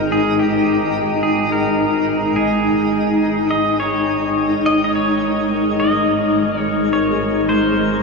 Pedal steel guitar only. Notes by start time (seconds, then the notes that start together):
0.12 G#4
0.39 G4
1.23 G#4
1.52 A#4
2.36 G#4
3.51 D#5
3.80 C#5
4.66 D#5
4.84 D#5
4.96 C#5
5.80 D#5
6.60 C#5
6.93 C#5
7.49 C5